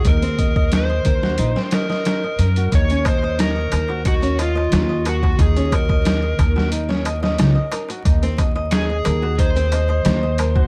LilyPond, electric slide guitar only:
\new Staff \with { instrumentName = "Electric slide guitar" } { \time 4/4 \key ees \dorian \tempo 4 = 90 bes'4 c''4. bes'4. | des''8 c''8 bes'4 ges'8 f'4 ges'8 | aes'8 bes'4. r2 | r4 aes'4 c''2 | }